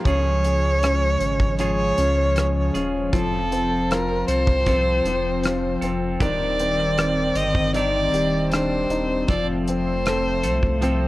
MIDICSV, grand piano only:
0, 0, Header, 1, 2, 480
1, 0, Start_track
1, 0, Tempo, 769231
1, 34, Time_signature, 4, 2, 24, 8
1, 6913, End_track
2, 0, Start_track
2, 0, Title_t, "Grand piano"
2, 0, Program_c, 0, 0
2, 0, Control_c, 0, 64, 127
2, 41, Control_c, 0, 64, 0
2, 42, Note_on_c, 0, 61, 53
2, 133, Control_c, 0, 64, 127
2, 282, Note_on_c, 0, 68, 44
2, 506, Note_off_c, 0, 61, 0
2, 516, Note_on_c, 0, 61, 49
2, 987, Note_off_c, 0, 68, 0
2, 996, Note_on_c, 0, 68, 49
2, 1226, Note_off_c, 0, 61, 0
2, 1235, Note_on_c, 0, 61, 49
2, 1473, Note_off_c, 0, 68, 0
2, 1482, Note_on_c, 0, 68, 44
2, 1710, Note_off_c, 0, 61, 0
2, 1719, Note_on_c, 0, 61, 50
2, 1944, Note_off_c, 0, 68, 0
2, 1949, Note_off_c, 0, 61, 0
2, 1961, Note_on_c, 0, 53, 58
2, 1962, Control_c, 0, 64, 0
2, 2066, Control_c, 0, 64, 127
2, 2196, Note_on_c, 0, 60, 47
2, 2439, Note_on_c, 0, 65, 50
2, 2914, Note_off_c, 0, 60, 0
2, 2923, Note_on_c, 0, 60, 52
2, 3151, Note_off_c, 0, 53, 0
2, 3161, Note_on_c, 0, 53, 51
2, 3371, Note_off_c, 0, 65, 0
2, 3402, Note_on_c, 0, 65, 50
2, 3634, Note_off_c, 0, 60, 0
2, 3643, Note_on_c, 0, 60, 51
2, 3856, Note_off_c, 0, 53, 0
2, 3864, Note_off_c, 0, 65, 0
2, 3871, Note_off_c, 0, 60, 0
2, 3880, Note_on_c, 0, 51, 54
2, 3882, Control_c, 0, 64, 0
2, 3989, Control_c, 0, 64, 127
2, 4120, Note_on_c, 0, 60, 51
2, 4836, Note_on_c, 0, 63, 57
2, 5052, Note_off_c, 0, 60, 0
2, 5078, Note_on_c, 0, 67, 49
2, 5321, Note_on_c, 0, 62, 50
2, 5549, Note_off_c, 0, 63, 0
2, 5559, Note_on_c, 0, 63, 50
2, 5772, Note_off_c, 0, 51, 0
2, 5774, Note_off_c, 0, 67, 0
2, 5783, Note_off_c, 0, 62, 0
2, 5789, Note_off_c, 0, 63, 0
2, 5794, Note_on_c, 0, 53, 56
2, 5802, Control_c, 0, 64, 0
2, 5909, Control_c, 0, 64, 127
2, 6045, Note_on_c, 0, 60, 46
2, 6283, Note_on_c, 0, 69, 50
2, 6748, Note_off_c, 0, 60, 0
2, 6757, Note_on_c, 0, 60, 52
2, 6913, Note_off_c, 0, 53, 0
2, 6913, Note_off_c, 0, 60, 0
2, 6913, Note_off_c, 0, 69, 0
2, 6913, End_track
0, 0, End_of_file